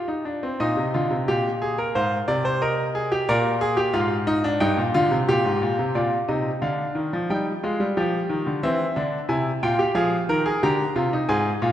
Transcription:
grand piano
Already playing: A#2 D5
0.08 D#4
0.25 D4
0.43 C4
0.60 A#2 D#4 D#5
0.77 C3
0.94 D3 F4
1.10 C3
1.28 A#2 G4
1.62 G#4
1.78 A#4
1.95 G#2 C5 F5
2.28 C3 D5
2.45 C5
2.61 A#4 D#5
2.95 G#4
3.12 G4
3.29 A#2 A#4 D5
3.61 G#4
3.77 G4
3.93 G#2 F4 F5
4.27 D#4
4.44 D4
4.60 G2 D#4 G5
4.77 A#2
4.94 D3 F4
5.11 C3
5.29 A#2 G4
5.45 G#2
5.62 A#2
5.79 C3
5.95 A#2 F4 D5
6.28 C3 D#4 D#5
6.62 D3 D4 F5
6.95 D#3
7.13 F3
7.30 G3 D#4 G5
7.63 G#3 F4
7.80 G3
7.97 F3 G4
8.29 D#3
8.47 D3
8.63 E3 C4 E5
8.96 D3 D4
9.29 C3 E4 G#5
9.63 A#2 F4 G5
9.79 G4
9.95 F3 G#4 F5
10.29 D#3 A#4
10.46 G#4
10.63 D3 G4 A#5
10.96 C3 F4
11.13 D#4
11.29 G#2 G#4 G#5
11.62 A#2 F4

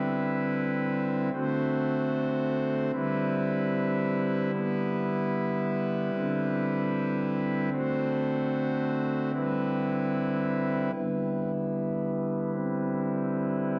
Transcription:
pipe organ
Already playing: D3 G3 C4 E4 B4
1.33 D3 A3 C4 F#4 C5
2.93 D3 G3 E4 B4
4.53 B3 B4
6.13 D3 C4
7.73 A3 F#4 C5
9.33 G3 E4 B4
10.93 D3 G3 B3 E4 B4
12.53 C4

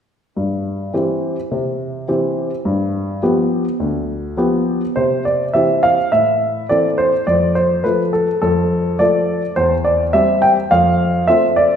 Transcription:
grand piano
0.37 G2
0.94 E3 C4 G4
1.51 C3
2.08 E3 C4 G4
2.65 G2
3.23 F3 B3 G4
3.80 D2
4.37 F3 B3 G4
4.96 C3 C5
5.25 D5
5.54 E3 C4 G4 E5
5.83 F5
6.12 A2 E5
6.69 E3 C4 A4 D5
6.98 C5
7.27 F2 D5
7.55 C5
7.84 F3 A3 A4 B4
8.13 A4
8.42 F2 A4
8.99 F3 A3 A4 D5
9.56 E2 C5
9.85 D5
10.13 G3 C4 G4 E5
10.42 G5
10.71 F2 F5
11.27 A3 C4 F4 E5
11.56 D5

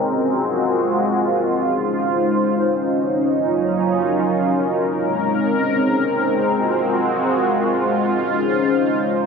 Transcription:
analog synth pad
Already playing: G#3 C4 A#4
0.07 F4 F#4
1.67 C#4 D#4 C5
3.27 F#3 F4 A#4
4.87 G#3 C4
6.47 F4 F#4
8.07 C#4 D#4 C5

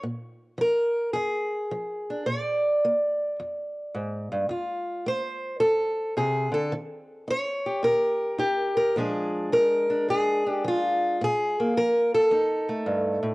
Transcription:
steel-string acoustic guitar
0.03 A#2
0.58 F3 A#4
1.13 F2 G#4
1.71 F3
2.10 D4
2.26 A#2 D5
2.85 A#3
3.40 F2
3.95 G#2
4.32 G2
4.49 F2 F4
5.06 A3 C5
5.60 F2 A4
6.17 C3 G#4
6.52 D3 A4
6.72 D#3
7.28 D#4 C#5
7.66 G4
7.83 A#2 A#4
8.38 D#4 G4
8.77 A#4
8.96 A#2 F3 G#3 D4 G#4
9.52 F3 A#4
9.90 D4
10.09 F2 G#4
10.46 D4 G4
10.64 F3 F4
11.21 A#2 G#4
11.60 A#3
11.77 F3 A#4
12.15 A4
12.31 F2 D#4
12.69 A3
12.86 G2
13.23 A2

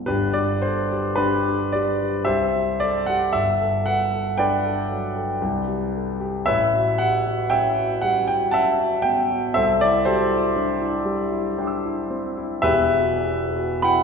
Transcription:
grand piano
0.06 G1 D4 G4 B4
0.33 G4 D5
0.62 A4 C5
0.92 G4
1.16 D4 G4 B4
1.49 G4
1.72 G3 D5
2.01 G4
2.25 C2 G4 C5 E5
2.55 G4
2.80 A4 D5
3.06 G4 F#5
3.33 G1 E5
3.60 A4
3.86 B4 F#5
4.13 A4
4.37 D4 B4 D5 G5
4.65 A4
4.91 F#3
5.15 A4
5.42 C2
5.68 G4
5.96 A4
6.21 G4
6.46 A1 B4 C#5 E5
6.74 F#4
6.98 G4 F#5
7.26 F#4
7.50 C#4 C#5 E5 G5
7.78 F#4
8.02 G3 F#5
8.28 F#4 G5
8.51 C#4 E5 F#5 A5
8.80 F#4
9.02 B3 G5
9.31 F#4
9.54 C2 A4 C5 E5
9.81 E4 D5
10.05 F#4 G4 A4 C5
10.32 E4
10.56 D4
10.81 E4
11.05 G3
11.32 E4
11.58 D4 G5 C6
11.64 D6 E6
11.85 E4
12.10 C4
12.37 E4
12.62 E1 E2 G4 B4 E5
12.94 F#4
13.23 G4
13.56 F#4
13.82 E4 F#5 G5 B5

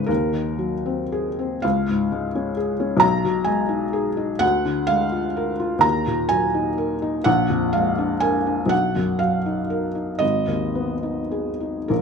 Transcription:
felt piano
Already playing: G#2 C#3 C#4 G#4 B4 C#5
0.06 D#2 A#4
0.33 D#3
0.59 F#3
0.86 C4
1.12 G#4
1.39 C4
1.62 C#2 F5
1.89 G#2
2.12 G#3
2.35 C#4
2.57 G#4
2.80 C#4
2.97 B1 A#5
3.24 B2
3.44 G#3 G#5
3.69 D#4
3.93 G#4
4.17 D#4
4.39 D2 F#5
4.65 D3
4.87 G#3 F5
5.12 F4
5.37 A#4
5.60 F4
5.79 D#2 A#5
6.07 A#2
6.29 F#3 G#5
6.54 D#4
6.78 A#4
7.02 D#4
7.24 A#1 F#5
7.50 F2
7.73 G#3 F5
7.98 D4
8.20 A#4 G#5
8.46 D4
8.66 B1 F#5
8.96 F#2
9.19 F#3 F5
9.46 D#4
9.70 A#4
9.95 D#4
10.19 G#1 D#5
10.48 D#2
10.75 B3
11.03 D#4
11.32 G#4
11.60 D#4
11.88 A#1 A#4

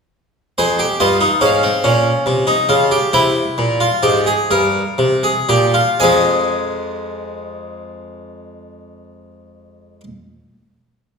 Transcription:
harpsichord
0.58 F2 G#4 C5
0.79 G4
1.00 G2 F4 D#5
1.21 D#4
1.41 G#2 C#4 F5
1.63 C4
1.84 A#2 C#4
2.26 C3
2.47 D#4
2.69 C#3 F4
2.91 G4
3.13 C3 E4 G5
3.58 A#2
3.80 F4
4.03 G#2 G4
4.26 G#4
4.51 G2 A#4
4.98 C3
5.23 G#4
5.49 A#2 G4
5.74 F4
6.00 F2 F3 G#3 G#4 G#5

